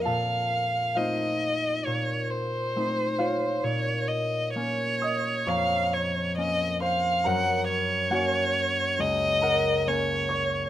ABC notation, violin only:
X:1
M:4/4
L:1/8
Q:1/4=68
K:Bbm
V:1 name="Violin"
f2 e2 d c3 | d e d2 f d e f | g d3 e2 d2 |]